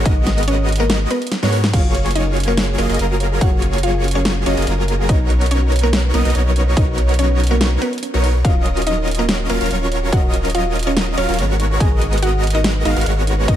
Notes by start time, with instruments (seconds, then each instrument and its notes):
0.06 sub bass G#1, synth pluck D#4 D#5, digital synth lead D#5, kick, closed hi-hat
0.27 snare, closed hi-hat
0.38 closed hi-hat
0.43 closed hi-hat
0.48 synth pluck C#4 C#5, closed hi-hat
0.69 closed hi-hat
0.72 closed hi-hat
0.76 closed hi-hat
0.80 synth pluck A#3 A#4
0.90 snare, closed hi-hat
1.11 synth pluck B3 B4, closed hi-hat
1.22 closed hi-hat
1.27 closed hi-hat
1.32 snare, closed hi-hat
1.43 sub bass G#2, supersaw synth G#3 B3 F#4 A#4 C#5, digital synth lead C#5, snare
1.53 open hi-hat
1.64 snare
1.73 sub bass F#1, supersaw synth F#3 A#3 F4 G#4 C#5, synth arpeggio sound C#4, synth pluck F4 F5, digital synth lead C#5, kick, closed hi-hat, crash
1.85 synth arpeggio sound F#4
1.94 synth arpeggio sound C#5, closed hi-hat
2.06 synth arpeggio sound G#4, closed hi-hat
2.11 closed hi-hat
2.15 synth arpeggio sound C#4, synth pluck D#4 D#5, closed hi-hat
2.27 synth arpeggio sound A#4
2.36 synth arpeggio sound C#4, closed hi-hat
2.40 closed hi-hat
2.43 closed hi-hat
2.48 synth pluck A#3 A#4, synth arpeggio sound F#4
2.57 synth arpeggio sound C#5, snare, closed hi-hat
2.69 synth arpeggio sound G#4
2.78 sub bass F#1, supersaw synth F#3 A#3 F4 G#4 D#5, synth pluck A#3 A#4, synth arpeggio sound C#4, digital synth lead D#5, closed hi-hat
2.89 sub bass F#1, supersaw synth F#3 A#3 F4 G#4 D#5, synth arpeggio sound A#4, digital synth lead D#5, closed hi-hat
2.94 closed hi-hat
2.99 sub bass F#1, supersaw synth F#3 A#3 F4 G#4 A#4, synth arpeggio sound C#4, digital synth lead A#4, closed hi-hat
3.11 synth arpeggio sound F#4
3.20 synth arpeggio sound C#5, closed hi-hat
3.32 synth arpeggio sound G#4
3.41 sub bass F#1, supersaw synth F#3 A#3 F4 G#4 C#5, synth arpeggio sound C#4, synth pluck F#4 F#5, digital synth lead C#5, kick, closed hi-hat
3.52 synth arpeggio sound A#4
3.62 synth arpeggio sound C#4, closed hi-hat
3.73 synth arpeggio sound F#4, closed hi-hat
3.78 closed hi-hat
3.83 synth pluck F4 F5, synth arpeggio sound C#5, closed hi-hat
3.94 synth arpeggio sound G#4
4.04 synth arpeggio sound C#4, closed hi-hat
4.08 closed hi-hat
4.11 closed hi-hat
4.15 synth pluck C#4 C#5, synth arpeggio sound A#4
4.25 synth arpeggio sound C#4, snare, closed hi-hat
4.36 synth arpeggio sound F#4
4.46 sub bass F#1, supersaw synth F#3 A#3 F4 G#4 D#5, synth pluck C#4 C#5, synth arpeggio sound C#5, digital synth lead D#5, closed hi-hat
4.57 sub bass F#1, supersaw synth F#3 A#3 F4 G#4 D#5, synth arpeggio sound G#4, digital synth lead D#5, closed hi-hat
4.62 closed hi-hat
4.67 sub bass F#1, supersaw synth F#3 A#3 F4 G#4 A#4, synth arpeggio sound C#4, digital synth lead A#4, closed hi-hat
4.78 synth arpeggio sound A#4
4.88 synth arpeggio sound C#4, closed hi-hat
4.99 synth arpeggio sound F#4
5.09 sub bass B1, synth pluck D#4 D#5, supersaw synth D#4, synth arpeggio sound C#5, digital synth lead C#5, kick, closed hi-hat
5.20 synth arpeggio sound A#4
5.30 synth arpeggio sound C#4, closed hi-hat
5.41 synth arpeggio sound B4, closed hi-hat
5.46 closed hi-hat
5.51 synth arpeggio sound C#4, synth pluck C#4 C#5, closed hi-hat
5.62 synth arpeggio sound F#4
5.72 synth arpeggio sound C#5, closed hi-hat
5.76 closed hi-hat
5.79 closed hi-hat
5.83 synth pluck A#3 A#4, synth arpeggio sound A#4
5.93 synth arpeggio sound C#4, snare, closed hi-hat
6.04 synth arpeggio sound B4
6.14 sub bass B1, supersaw synth F#3 B3 D#4 A#4 D#5, synth pluck A#3 A#4, synth arpeggio sound C#4, digital synth lead D#5, closed hi-hat
6.25 sub bass B1, supersaw synth F#3 B3 D#4 A#4 D#5, synth arpeggio sound F#4, digital synth lead D#5, closed hi-hat
6.30 closed hi-hat
6.35 sub bass B1, supersaw synth F#3 B3 D#4 A#4 C#5, digital synth lead C#5, synth arpeggio sound C#5, closed hi-hat
6.46 synth arpeggio sound A#4
6.56 synth arpeggio sound C#4, closed hi-hat
6.67 synth arpeggio sound B4
6.77 sub bass B1, supersaw synth B3 A#4, synth arpeggio sound C#4, synth pluck D#4 D#5, digital synth lead C#5, kick, closed hi-hat
6.88 synth arpeggio sound F#4
6.98 synth arpeggio sound C#5, closed hi-hat
7.09 synth arpeggio sound A#4, closed hi-hat
7.14 closed hi-hat
7.19 synth arpeggio sound C#4, synth pluck C#4 C#5, closed hi-hat
7.30 synth arpeggio sound B4
7.40 synth arpeggio sound C#4, closed hi-hat
7.44 closed hi-hat
7.47 closed hi-hat
7.51 synth pluck A#3 A#4, synth arpeggio sound F#4
7.61 synth arpeggio sound C#5, snare, closed hi-hat
7.72 synth arpeggio sound A#4
7.82 synth pluck B3 B4, synth arpeggio sound C#4, closed hi-hat
7.93 synth arpeggio sound B4, closed hi-hat
7.98 closed hi-hat
8.03 synth arpeggio sound C#4, closed hi-hat
8.14 sub bass B1, supersaw synth F#3 B3 D#4 A#4 C#5, synth arpeggio sound F#4, digital synth lead C#5
8.24 synth arpeggio sound C#5, open hi-hat
8.35 synth arpeggio sound A#4
8.45 sub bass D#1, supersaw synth F#3 C#4 F4 A#4 D#5, synth arpeggio sound C#4, synth pluck F4 F5, digital synth lead D#5, kick, closed hi-hat
8.56 synth arpeggio sound F4
8.66 synth arpeggio sound C#5, closed hi-hat
8.77 synth arpeggio sound F#4, closed hi-hat
8.82 closed hi-hat
8.87 synth arpeggio sound C#4, synth pluck D#4 D#5, closed hi-hat
8.98 synth arpeggio sound A#4
9.08 synth arpeggio sound C#4, closed hi-hat
9.11 closed hi-hat
9.15 closed hi-hat
9.19 synth pluck A#3 A#4, synth arpeggio sound F4
9.29 synth arpeggio sound C#5, snare, closed hi-hat
9.40 synth arpeggio sound F#4
9.50 sub bass D#1, supersaw synth F#3 C#4 F4 A#4 F5, synth pluck A#3 A#4, synth arpeggio sound C#4, digital synth lead F5, closed hi-hat
9.61 sub bass D#1, supersaw synth F#3 C#4 F4 A#4 F5, synth arpeggio sound A#4, digital synth lead F5, closed hi-hat
9.66 closed hi-hat
9.71 sub bass D#1, supersaw synth F#3 C#4 F4 A#4 C#5, synth arpeggio sound C#4, digital synth lead C#5, closed hi-hat
9.82 synth arpeggio sound F4
9.92 synth arpeggio sound C#5, closed hi-hat
10.03 synth arpeggio sound F#4
10.13 sub bass D#1, supersaw synth F#3 C#4 F4 A#4 D#5, synth arpeggio sound C#4, synth pluck F#4 F#5, digital synth lead D#5, kick, closed hi-hat
10.24 synth arpeggio sound A#4
10.34 synth arpeggio sound C#4, closed hi-hat
10.45 synth arpeggio sound F4, closed hi-hat
10.50 closed hi-hat
10.55 synth pluck F4 F5, synth arpeggio sound C#5, closed hi-hat
10.66 synth arpeggio sound F#4
10.76 synth arpeggio sound C#4, closed hi-hat
10.79 closed hi-hat
10.83 closed hi-hat
10.87 synth pluck C#4 C#5, synth arpeggio sound A#4
10.96 synth arpeggio sound C#4, snare, closed hi-hat
11.08 synth arpeggio sound F4
11.17 sub bass D#1, supersaw synth F#3 C#4 F4 A#4 F5, synth pluck C#4 C#5, synth arpeggio sound C#5, digital synth lead F5, closed hi-hat
11.29 sub bass D#1, supersaw synth F#3 C#4 F4 A#4 F5, synth arpeggio sound F#4, digital synth lead F5, closed hi-hat
11.34 closed hi-hat
11.38 sub bass G#1, supersaw synth G#3 B3 F#4 A#4 C#5, synth arpeggio sound C#4, digital synth lead C#5, closed hi-hat
11.50 synth arpeggio sound A#4
11.59 synth arpeggio sound D#4, closed hi-hat
11.71 synth arpeggio sound G#4
11.80 sub bass G#1, supersaw synth B3 A#4, synth pluck G#4 G#5, digital synth lead D#5, synth arpeggio sound D#5, kick, closed hi-hat
11.92 synth arpeggio sound A#4
12.01 synth arpeggio sound D#4, closed hi-hat
12.13 synth arpeggio sound B4, closed hi-hat
12.18 closed hi-hat
12.22 synth arpeggio sound D#4, synth pluck F#4 F#5, closed hi-hat
12.34 synth arpeggio sound G#4
12.43 synth arpeggio sound D#5, closed hi-hat
12.47 closed hi-hat
12.50 closed hi-hat
12.55 synth pluck D#4 D#5, synth arpeggio sound A#4
12.64 synth arpeggio sound D#4, snare, closed hi-hat
12.76 synth arpeggio sound B4
12.85 sub bass G#1, supersaw synth G#3 B3 F#4 A#4 F5, synth arpeggio sound D#4, synth pluck D#4 D#5, digital synth lead F5, closed hi-hat
12.96 sub bass G#1, supersaw synth G#3 B3 F#4 A#4 F5, synth arpeggio sound G#4, digital synth lead F5, closed hi-hat
13.01 closed hi-hat
13.06 sub bass G#1, supersaw synth G#3 B3 F#4 A#4 C#5, digital synth lead C#5, synth arpeggio sound D#5, closed hi-hat
13.18 synth arpeggio sound A#4
13.27 synth arpeggio sound D#4, closed hi-hat
13.38 synth arpeggio sound B4
13.48 sub bass G#1, supersaw synth G#3 B3 F#4 A#4 D#5, synth arpeggio sound D#4, synth pluck D#4 D#5, digital synth lead D#5, kick, closed hi-hat